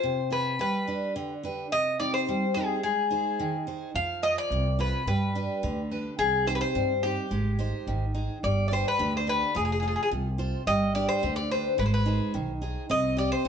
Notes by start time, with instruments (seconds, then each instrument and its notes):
Already playing: steel-string acoustic guitar F4 G#4 C5, bouzouki C5
0.03 steel-string acoustic guitar C3
0.30 steel-string acoustic guitar F4 G#4 C5, bouzouki B4
0.59 steel-string acoustic guitar G3, bouzouki B4
0.87 steel-string acoustic guitar D4 G4 B4
1.16 steel-string acoustic guitar D3
1.44 steel-string acoustic guitar D4 G4 B4
1.72 steel-string acoustic guitar C3, bouzouki D#5
2.00 steel-string acoustic guitar C4 D#4 G4, bouzouki D5
2.14 bouzouki C5
2.29 steel-string acoustic guitar G3
2.54 steel-string acoustic guitar C4 D#4 G4, bouzouki G#4
2.83 steel-string acoustic guitar G#3, bouzouki G#4
3.11 steel-string acoustic guitar D#4 G#4 C5
3.40 steel-string acoustic guitar D#3
3.67 steel-string acoustic guitar D#4 G#4 C5
3.95 upright bass F2, steel-string acoustic guitar F3, bouzouki F5
4.23 steel-string acoustic guitar F4 G#4 C5, bouzouki D#5
4.38 bouzouki D5
4.50 upright bass C2, steel-string acoustic guitar C3
4.79 steel-string acoustic guitar F4 G#4 C5, bouzouki B4
5.06 upright bass G2, steel-string acoustic guitar G3, bouzouki B4
5.35 steel-string acoustic guitar D4 G4 B4
5.63 upright bass D2, steel-string acoustic guitar D3
5.91 steel-string acoustic guitar D4 G4 B4
6.19 upright bass C2, steel-string acoustic guitar C3, bouzouki G#4
6.47 steel-string acoustic guitar C4 D#4 G4, bouzouki C5
6.55 bouzouki B4
6.61 bouzouki C5
6.75 upright bass G2, steel-string acoustic guitar G3
7.03 steel-string acoustic guitar C4 D#4 G4, bouzouki G4
7.31 upright bass G#1, steel-string acoustic guitar G#3
7.59 steel-string acoustic guitar G#3 D#4 C5
7.87 upright bass G#1, steel-string acoustic guitar D#3
8.15 steel-string acoustic guitar D#4 G#4 C5
8.43 upright bass G1, steel-string acoustic guitar G3, bouzouki D5
8.68 steel-string acoustic guitar D4 G4, bouzouki D5
8.73 steel-string acoustic guitar B4, bouzouki C5
8.88 bouzouki B4
8.99 upright bass D2, steel-string acoustic guitar D3
9.17 bouzouki C5
9.27 steel-string acoustic guitar D4 G4 B4, bouzouki B4
9.55 upright bass F1, steel-string acoustic guitar F3, bouzouki G#4
9.65 bouzouki G#4
9.72 bouzouki G#4
9.80 steel-string acoustic guitar F4 A4 C5, bouzouki G#4
9.88 bouzouki G#4
9.96 bouzouki G#4
10.03 bouzouki G#4
10.11 upright bass C2, steel-string acoustic guitar C3
10.38 steel-string acoustic guitar F4 A4 C5
10.67 upright bass G1, steel-string acoustic guitar G3, bouzouki D#5
10.95 steel-string acoustic guitar D4 G4 B4, bouzouki D5
11.09 bouzouki C5
11.23 upright bass D2, steel-string acoustic guitar D3
11.36 bouzouki D5
11.51 steel-string acoustic guitar D4 G4 B4, bouzouki C5
11.78 upright bass G#1, steel-string acoustic guitar G#3, bouzouki B4
11.86 bouzouki C5
11.94 bouzouki B4
12.06 steel-string acoustic guitar D#4 G#4 C5
12.34 upright bass B1, steel-string acoustic guitar D#3
12.62 steel-string acoustic guitar D#4 G#4 C5
12.90 upright bass C2, steel-string acoustic guitar C4, bouzouki D#5
13.17 steel-string acoustic guitar G4 C5 D#5, bouzouki D5
13.32 bouzouki C5
13.45 steel-string acoustic guitar G3